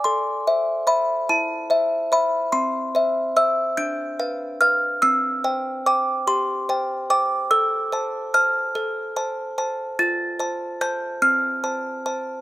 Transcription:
\new Staff \with { instrumentName = "Music box" } { \time 6/8 \key c \major \tempo 4. = 48 << { c'''4 b''8 a''4 b''8 | c'''4 e'''8 g'''4 f'''8 | e'''4 d'''8 c'''4 d'''8 | \key f \lydian e'''4 f'''2 |
a'''4 g'''8 f'''4 r8 | } \\ { a'8 <c'' e''>8 <c'' e''>8 e'8 <c'' e''>8 <c'' e''>8 | c'8 <c'' e''>8 <c'' e''>8 d'8 <b' f''>8 <b' f''>8 | c'8 <c'' g''>8 <c'' g''>8 g'8 <c'' g''>8 <c'' g''>8 | a'8 <c'' a''>8 <c'' a''>8 a'8 <c'' a''>8 <c'' a''>8 |
f'8 <c'' a''>8 <c'' a''>8 c'8 <c'' a''>8 <c'' a''>8 | } >> }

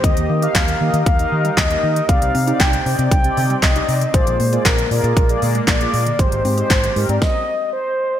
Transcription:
<<
  \new Staff \with { instrumentName = "Soft synth lead" } { \time 4/4 \key ees \major \tempo 4 = 117 ees''4 f''4 f''4 ees''4 | f''4 g''4 g''4 ees''4 | c''4 bes'8 bes'4 r8 d''4 | c''8. c''4 d''16 ees''4 c''4 | }
  \new Staff \with { instrumentName = "Analog polysynth" } { \time 4/4 \key ees \major <bes ees' g' ees''>8 r16 <bes ees' g' f''>8 r16 <bes ees' g' ees''>8 r16 <bes ees' g' ees''>8 r8 <bes ees' g' ees''>8 r16 | <c' ees' g' d''>8 r16 <c' ees' g' d''>8 r16 <c' ees' g' d''>8 r16 <c' ees' g' d''>8 r8 <c' ees' g' d''>8 r16 | <bes f' aes' d''>8 r16 <bes f' aes' d''>8 r16 <bes f' aes' d''>8 r16 <bes f' aes' d''>8 r8 <bes f' aes' d''>8 r16 | <aes ees' g' c''>8 r16 <aes ees' g' c''>8 r16 <aes ees' g' bes'>8 r2 | }
  \new Staff \with { instrumentName = "Analog synth pad" } { \time 4/4 \key ees \major << { <ees g' bes'>1 | c1 | bes1 | <c' g'>2 r2 | } \\ { ees'1 | c'1 | aes1~ | aes2 r2 | } >> }
  \new Staff \with { instrumentName = "Synth arpeggio sound" } { \time 4/4 \key ees \major ees16 r16 bes16 g'16 ees''16 ees16 r16 bes16 g'16 r16 ees16 g16 bes16 g'16 r16 ees16 | d16 r16 c'16 ees'16 d''16 d16 r16 c'16 ees'16 r16 d16 g16 c'16 ees'16 r16 d16 | d16 r16 bes16 f'16 d''16 d16 r16 bes16 f'16 r16 d16 aes16 bes16 f'16 r16 d16 | ees16 r16 c'16 g'16 r16 ees16 r16 c'16 r2 | }
  \new Staff \with { instrumentName = "Fingered electric bass" } { \clef bass \time 4/4 \key ees \major ees,16 ees,16 ees8 ees,8 ees16 ees16 ees,8 ees8 ees,8 ees8 | c,16 c,16 c8 c,8 c16 c16 c,8 c8 c,8 c8 | bes,,16 bes,,16 bes,8 bes,,8 bes,16 bes,16 bes,,8 bes,8 bes,,8 bes,8 | aes,,16 aes,,16 aes,8 aes,,8 aes,16 aes,16 r2 | }
  \new DrumStaff \with { instrumentName = "Drums" } \drummode { \time 4/4 <hh bd>16 hh8 hh16 <hc hh bd sn>16 hh8 hh16 <hh bd>16 hh8 hh16 <hc hh bd sn>16 hh8 hh16 | <hh bd>16 hh16 hho16 hh16 <hc hh bd sn>16 hh16 hho16 hh16 <hh bd>16 hh16 hho16 hh16 <hc hh bd sn>16 hh16 hho16 hh16 | <hh bd>16 hh16 hho16 hh16 <hc hh bd sn>16 hh16 hho16 hh16 <hh bd>16 hh16 hho16 hh16 <hc hh bd sn>16 hh16 hho16 hh16 | <hh bd>16 hh16 hho16 hh16 <hc hh bd sn>16 hh16 hho16 hh16 <bd sn>4 r4 | }
>>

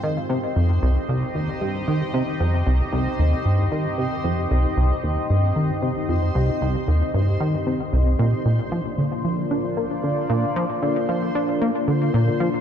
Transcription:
<<
  \new Staff \with { instrumentName = "Synth texture" } { \time 4/4 \key c \minor \tempo 4 = 114 <c'' c'''>1~ | <c'' c'''>1~ | <c'' c'''>1~ | <c'' c'''>1 |
<c'' c'''>1~ | <c'' c'''>1 | }
  \new Staff \with { instrumentName = "Analog synth pad" } { \time 4/4 \key c \minor <c' ees' g' ees''>1~ | <c' ees' g' ees''>1~ | <c' ees' g' ees''>1~ | <c' ees' g' ees''>1 |
<bes d' f' d''>1~ | <bes d' f' d''>1 | }
  \new Staff \with { instrumentName = "Analog synth bass" } { \clef bass \time 4/4 \key c \minor ees8 c8 f,8 c,8 c,8 ees,8 g,8 ees8 | c8 f,8 c,8 c,8 ees,8 g,8 ees8 c8 | f,8 c,8 c,8 ees,8 g,8 ees8 c8 f,8 | c,8 c,8 ees,8 g,8 ees8 c8 c,8 bes,8 |
bes,8 f8 d8 f8 d'8 bes8 d8 bes,8 | f8 d8 f8 d'8 bes8 d8 bes,8 f8 | }
>>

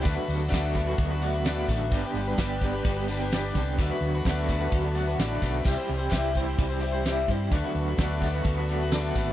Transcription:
<<
  \new Staff \with { instrumentName = "String section" } { \time 4/4 \key d \mixolydian \tempo 4 = 129 <b d' fis' a'>1 | <b d' g' b'>1 | <b d' fis' a'>1 | <c' e' g' c''>1 |
<b d' fis' a'>1 | }
  \new Staff \with { instrumentName = "Twelve-string acoustic guitar" } { \time 4/4 \key d \mixolydian <d a d' fis' b'>16 <d' fis' b'>8 <d' fis' b'>16 <d a d' fis' b'>8 <a d' fis' b'>16 <d' fis' b'>8 <d' fis' b'>16 <a d' fis' b'>16 <d' fis' b'>16 <d a d' fis' b'>8 <a d' fis' b'>16 <d' fis' b'>16 | <g d' g' b'>16 <d' g' b'>8 <d' g' b'>16 <g d' g' b'>8 <g d' g' b'>16 <d' g' b'>8 <d' g' b'>16 <g d' g' b'>16 <d' g' b'>16 <g d' g' b'>8 <g d' g' b'>8 | <d a d' fis' b'>16 <d' fis' b'>8 <d' fis' b'>16 <d a d' fis' b'>8 <a d' fis' b'>16 <d' fis' b'>8 <d' fis' b'>16 <a d' fis' b'>16 <d' fis' b'>16 <d a d' fis' b'>8 <a d' fis' b'>8 | <c e g c' e' c''>16 <g c' e' c''>8 <g c' e' c''>16 <c e g c' e' c''>8 <g c' e' c''>16 <g c' e' c''>8 <g c' e' c''>16 <g c' e' c''>16 <g c' e' c''>16 <c e g c' e' c''>8 <g c' e' c''>8 |
<d a d' fis' b'>16 <d' fis' b'>8 <d' fis' b'>16 <d a d' fis' b'>8 <a d' fis' b'>16 <d' fis' b'>8 <d' fis' b'>16 <a d' fis' b'>16 <d' fis' b'>16 <d a d' fis' b'>8 <a d' fis' b'>8 | }
  \new Staff \with { instrumentName = "Clean electric guitar" } { \time 4/4 \key d \mixolydian <d fis a b fis'>8 <a b fis'>8 <fis a b fis'>8 <d fis a b fis'>8 <fis a b fis'>8 <a b fis'>8 <d fis a b fis'>8 <a b>8 | <g, d g b d' g'>8 <g b d' g'>8 <g b d' g'>8 <g, d g b d' g'>8 <g b d' g'>8 <g b d' g'>8 <g, d g b d' g'>8 <g b d' g'>8 | <d fis a b fis'>8 <a b fis'>8 <fis a b fis'>8 <d fis a b fis'>8 <fis a b fis'>8 <a b fis'>8 <d fis a b fis'>8 <a b fis'>8 | <c e g e' g'>8 <g e' g'>8 <e g e' g'>8 <c e g e' g'>8 <e g e' g'>8 <g e' g'>8 <c e g e' g'>8 <g e' g'>8 |
<d fis a b fis'>8 <a b fis'>8 <fis a b fis'>8 <d fis a b fis'>8 <fis a b fis'>8 <a b fis'>8 <d fis a b fis'>8 <a b fis'>8 | }
  \new Staff \with { instrumentName = "Fingered electric bass" } { \clef bass \time 4/4 \key d \mixolydian d,16 r16 d,8 d,4 d,4. a,,8 | g,,16 r16 g,,8 g,,4 g,,4. c,8 | d,16 r16 d,8 d,4 d,4 a,,8 b,,8 | c,16 r16 c,8 c,4 c,4. g,8 |
d,16 r16 d,8 d,4 d,4. gis,,8 | }
  \new DrumStaff \with { instrumentName = "Drums" } \drummode { \time 4/4 <bd cymr>8 cymr8 <bd cymr sn>8 <bd cymr>8 <bd cymr>8 cymr16 sn16 <cymr sn>8 <bd cymr>8 | <bd cymr>8 cymr8 <bd cymr sn>8 <bd cymr>8 <bd cymr>8 cymr16 sn16 <cymr sn>8 <bd cymr>8 | <bd cymr>8 cymr8 <bd cymr sn>8 <bd cymr>8 <bd cymr>8 cymr16 sn16 <cymr sn>8 <bd cymr>8 | <cymc bd>8 cymr8 <bd cymr sn>8 <bd cymr>8 <bd cymr>8 cymr16 sn16 <cymr sn>8 <bd cymr>8 |
<bd cymr>8 cymr8 <bd cymr sn>8 <bd cymr>8 <bd cymr>8 cymr16 sn16 <cymr sn>8 <bd cymr>8 | }
>>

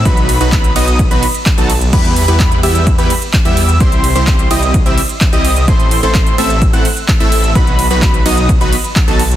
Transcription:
<<
  \new Staff \with { instrumentName = "Analog synth lead" } { \time 4/4 \key b \phrygian \tempo 4 = 128 b''8. b''8. dis'''8 r16 b''16 r8. a''16 r8 | b''8. b''8. e'''8 r16 b''16 r8. e'''8. | c'''8. c'''8. dis'''8 r16 e'''16 r8. dis'''8. | c'''8. c'''8. e'''8 r16 fis'''16 r8. e'''8. |
b''8. b''8. dis'''8 r16 b''16 r8. a''16 r8 | }
  \new Staff \with { instrumentName = "Supersaw synth" } { \time 4/4 \key b \phrygian <fis b dis' fis' b'>8. <fis b dis' fis' b'>8. <fis b dis' fis' dis''>8 r16 <fis b dis' fis' b'>16 r8. <fis b dis' fis' a'>16 r8 | <g b e' g' b'>8. <g b e' g' b'>8. <g b e' g' e''>8 r16 <g b e' g' b'>16 r8. <g b e' g' e''>8. | <g c' e' g' c''>8. <g c' e' g' c''>8. <g c' e' g' dis''>8 r16 <g c' e' g' e''>16 r8. <g c' e' g' dis''>8. | <a c' e' a' c''>8. <a c' e' a' c''>8. <a c' e' a' e''>8 r16 <a c' e' a' fis''>16 r8. <a c' e' a' e''>8. |
<fis b dis' fis' b'>8. <fis b dis' fis' b'>8. <fis b dis' fis' dis''>8 r16 <fis b dis' fis' b'>16 r8. <fis b dis' fis' a'>16 r8 | }
  \new Staff \with { instrumentName = "Detuned saw bass" } { \clef bass \time 4/4 \key b \phrygian b,,8. b,,8. b,,8. b,,16 r8. b,,8. | r8. e,8. e,8. e,16 r8. e,8. | c,8. c,8. c,8. c,16 r8. c,8. | a,,8. a,,8. a,,8. a,,16 r8. a,,8. |
r8. b,,8. b,,8. b,,16 r8. b,,8. | }
  \new DrumStaff \with { instrumentName = "Drums" } \drummode { \time 4/4 <hh bd>16 hh16 <hho cymr>16 hh16 <hc hh bd>16 hh16 <hho cymr>16 hh16 <hh bd>16 hh16 <hho cymr>16 hh16 <hc hh bd>16 hh16 <hho cymr>16 hh16 | <cymc hh bd>16 hh16 <hho cymr>16 hh16 <hc hh bd>16 hh16 <hho cymr>16 hh16 <hh bd>16 hh16 <hho cymr>16 hh16 <hc hh bd>16 hh16 <hho cymr>16 hh16 | <hh bd>16 hh16 <hho cymr>16 hh16 <hc hh bd>16 hh16 <hho cymr>16 hh16 <hh bd>16 hh16 <hho cymr>16 hh16 <hc hh bd>16 hh16 <hho cymr>16 hh16 | <hh bd>16 hh16 <hho cymr>16 hh16 <hc hh bd>16 hh16 <hho cymr>16 hh16 <hh bd>16 hh16 <hho cymr>16 hh16 <hc hh bd>16 hh16 <hho cymr>16 hh16 |
<hh bd>16 hh16 <hho cymr>16 hh16 <hc hh bd>16 hh16 <hho cymr>16 hh16 <hh bd>16 hh16 <hho cymr>16 hh16 <hc hh bd>16 hh16 <hho cymr>16 hh16 | }
>>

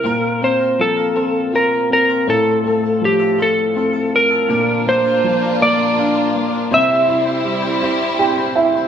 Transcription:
<<
  \new Staff \with { instrumentName = "Electric slide guitar" } { \time 6/8 \key bes \lydian \tempo 4. = 54 bes'8 c''8 a'4 bes'8 bes'8 | a'4 g'8 a'4 bes'8~ | bes'8 c''4 d''4. | e''2 r4 | }
  \new Staff \with { instrumentName = "Clean electric guitar" } { \time 6/8 \key bes \lydian <bes c' f' bes'>8 <bes c' f' bes'>16 <c' f' bes'>8 <c' f' bes'>16 <bes c' f'>8 <bes c' f' bes'>16 <c' f' bes'>8 <c' f' bes'>16 | <a c' f' a'>8 <a c' f' a'>16 <c' f' a'>8 <c' f' a'>16 <a c' f' a'>8 <a c' f' a'>16 <c' f' a'>8 <c' f' a'>16 | <bes, d f bes d' bes'>8 <f bes d' bes'>16 <f bes d' bes'>8 <f bes d' bes'>16 <bes, d f bes d' bes'>8 <f bes d' bes'>16 <f bes d' bes'>8 <f bes d' bes'>16 | <c g c' e' c''>8 <g c' e' c''>16 <c' e' c''>8 <c' e' c''>16 <c g c' e' c''>8 <g c' e' c''>16 <c' e' c''>8 <c' e' c''>16 | }
  \new Staff \with { instrumentName = "String section" } { \time 6/8 \key bes \lydian r2. | r2. | <bes d' f'>2. | <g c' e'>2. | }
  \new Staff \with { instrumentName = "Upright piano" } { \time 6/8 \key bes \lydian bes,8 c'8 f8 c'8 f'8 c'8 | a,8 a8 f4 c'4 | bes,8 bes8 f8 bes8 d'8 bes8 | c8 e'8 g8 e'8 <g' g''>8 <e' e''>8 | }
>>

